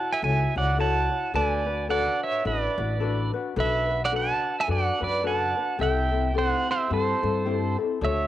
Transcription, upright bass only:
0.22 0.44 C#2 medium
0.56 1.06 C#2 medium
1.34 2.06 D2 medium
2.45 2.66 A1 medium
2.78 3.29 A1 medium
3.56 4.29 B1 loud
4.68 4.89 F#2 medium
5.01 5.52 F#2 medium
5.79 6.51 C2 medium
6.90 7.12 G2 medium
7.23 7.74 G2 medium
8.01 8.27 D2 medium

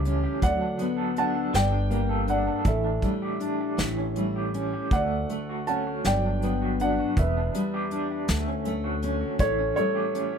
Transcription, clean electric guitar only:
0.00 0.42 E3 medium
0.00 0.78 A3 soft
0.00 0.22 G4 medium
0.05 0.50 C#4 medium
0.24 0.50 G4 medium
0.42 1.53 F#3 medium
0.61 1.15 D4 soft
0.78 1.61 B3 medium
0.97 1.34 A4 medium
1.16 1.61 D4 medium
1.35 1.93 A4 medium
1.53 2.65 G3 medium
1.72 2.27 D4 medium
1.90 2.72 A#3 medium
2.09 2.47 A4 medium
2.28 2.73 D4 medium
2.47 2.73 A4 medium
2.65 3.78 E3 medium
2.84 3.40 D4 medium
3.04 3.86 A3 medium
3.22 3.59 G4 medium
3.42 3.86 D4 medium
3.60 3.86 G4 soft
3.79 5.00 E3 medium
3.97 4.54 C#4 soft
4.17 4.91 A3 soft
4.36 4.72 G4 medium
4.55 5.00 C#4 soft
4.73 4.99 G4 soft
4.92 5.29 A3 medium
5.30 6.13 A3 soft
5.49 5.86 F#4 medium
5.68 6.13 C#4 medium
5.87 6.13 F#4 medium
6.06 7.25 F#3 medium
6.25 6.79 D4 soft
6.43 7.16 B3 soft
6.62 6.98 F#4 soft
6.81 7.25 D4 medium
6.99 7.25 F#4 soft
7.18 7.54 B3 medium
7.37 7.91 D4 medium
7.55 8.29 B3 medium
7.74 8.10 G4 medium
7.92 8.36 D4 medium
8.11 8.36 G4 soft
8.30 8.65 A3 medium
8.47 9.02 C#4 soft
8.66 9.47 A3 medium
8.84 9.20 F#4 medium
9.03 9.47 C#4 medium
9.21 9.47 F#4 medium
9.39 10.38 E3 medium
9.59 10.12 C#4 medium
9.77 10.38 A3 medium
9.95 10.31 G4 medium
10.14 10.38 C#4 medium
10.32 10.38 G4 medium

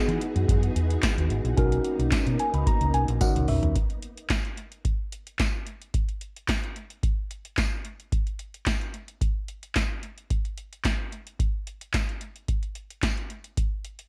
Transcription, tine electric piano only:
0.00 1.53 B3 medium
0.00 1.53 D#4 medium
0.00 1.54 F#4 medium
0.00 1.54 G#4 medium
1.57 3.18 C#4 medium
1.57 3.18 D#4 medium
1.57 3.18 F#4 medium
1.57 3.18 A#4 medium
2.40 2.53 G#5 medium
2.54 2.66 B5 medium
2.67 2.92 A#5 medium
2.94 3.19 G#5 medium
3.21 3.76 C#4 medium
3.21 3.76 D#4 medium
3.21 3.76 F#4 medium
3.21 3.76 A#4 medium
3.21 3.47 F#5 medium
3.49 3.74 E5 medium

